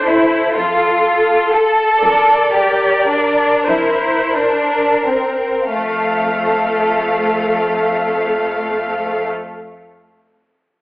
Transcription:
Already playing: F2 A4 C5
0.06 E4
0.56 F2 F4 A4
1.06 A4
1.54 A4
2.02 F2 A#4 D5
2.53 G4 A#4
3.09 D4
3.68 F2 E4 C5
4.33 D4 A#4
5.05 C4
5.71 F2 A3 A4 F5

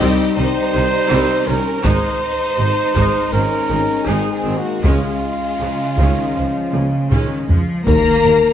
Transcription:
Already playing: G3 D#4 G4 D#5
0.00 C2 G3 C4, taiko
0.35 C2 C3 D#3 G3 D#4 C5
0.74 C2 C3 D#3
1.11 C2 C3 G3 C4
1.46 C2 C3 D#3 G3 C#4 A#4
1.83 G#1 G#2 G#3 D#4 C5, taiko
2.58 G#1 G#2 C3 G#3
2.95 G#1 G#2 G#3 D#4, taiko
3.32 G#1 G#2 D#3 C#4 A#4 C5
3.70 G#1 G#2 D#3 G#3
4.07 G#1 G#2 G#3 C4 D#4 G#4
4.32 C4 G#4
4.45 G#1 G#2 D#3 C4
4.56 A#3 F#4
4.81 C#2 C#3 G#3 C#4 F4, taiko
4.86 C#4
5.59 C#2 C#3 F3
5.98 C#2 D#3 G#3 C#4, taiko
6.35 C#2 F3 G#3
6.73 C#2 C#3 F3, taiko high
7.10 C#2 D#3 G#3 C#4, taiko low-mid
7.49 C#2 F3 G#3, taiko low
7.86 D#2 D#3 A#3 A#4 A#5, taiko, impact
8.24 D#2

